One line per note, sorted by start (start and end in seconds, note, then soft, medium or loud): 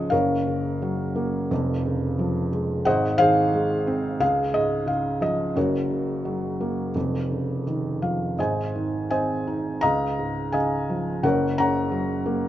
0.00 0.14 C#2 medium
0.00 0.14 G#2 soft
0.00 0.10 C#3 medium
0.00 0.11 F3 soft
0.00 0.13 F4 medium
0.00 0.14 G#4 medium
0.00 0.12 C#5 medium
0.00 0.14 D#5 medium
0.10 1.47 F#1 medium
0.10 1.47 F#2 medium
0.10 2.48 A#4 medium
0.10 2.48 C#5 medium
0.10 2.47 F5 medium
0.47 1.48 C#3 soft
0.82 1.49 F#3 medium
1.16 1.49 A#3 medium
1.51 2.82 F1 medium
1.51 2.82 F2 medium
1.86 2.83 C#3 soft
2.19 2.84 F3 medium
2.53 2.85 G#3 soft
2.85 4.17 G#1 medium
2.85 4.17 G#2 medium
2.85 3.18 C5 medium
2.85 4.17 D#5 medium
2.85 3.21 F#5 medium
3.18 4.17 D#3 medium
3.18 4.17 G#4 medium
3.18 4.17 C5 medium
3.18 4.19 F5 loud
3.53 4.19 G#3 medium
3.87 4.20 C4 medium
4.20 5.52 C#2 medium
4.20 5.52 G#4 medium
4.20 4.55 F5 medium
4.53 5.53 G#2 soft
4.53 4.89 D#5 medium
4.86 5.53 C#3 medium
4.86 5.23 F5 medium
5.21 5.54 F3 soft
5.21 5.57 D#5 medium
5.56 6.91 F#1 medium
5.56 6.91 F#2 medium
5.56 7.63 F#4 medium
5.56 7.63 A#4 soft
5.56 7.62 C#5 medium
5.91 6.92 C#3 soft
6.25 6.93 F#3 soft
6.61 6.94 A#3 soft
6.95 8.34 F1 medium
6.95 8.34 F2 medium
7.32 8.36 C#3 soft
7.67 8.36 D#3 soft
8.02 8.37 F3 soft
8.02 8.36 F5 medium
8.39 9.78 G#1 soft
8.39 9.79 G#2 medium
8.39 9.10 C5 medium
8.39 9.10 D#5 soft
8.39 9.09 G#5 medium
8.75 9.80 D#3 soft
9.10 9.80 C4 soft
9.10 9.79 C5 medium
9.10 9.79 D#5 medium
9.10 9.84 G#5 medium
9.47 9.82 D#4 soft
9.81 11.21 C#2 medium
9.81 10.52 D#5 medium
9.81 10.52 F5 medium
9.81 10.55 A#5 loud
10.19 11.22 G#2 soft
10.52 11.22 C#3 medium
10.52 11.20 D#5 medium
10.52 11.20 F5 medium
10.52 11.20 G#5 medium
10.90 11.23 F3 soft
11.23 12.48 F#1 medium
11.23 12.48 F#2 medium
11.23 12.48 A#4 medium
11.23 11.58 C#5 medium
11.23 11.59 F#5 medium
11.58 12.48 C#3 medium
11.58 12.48 C#5 medium
11.58 12.48 F#5 medium
11.58 12.48 A#5 medium
11.92 12.48 F#3 medium
12.26 12.48 A#3 medium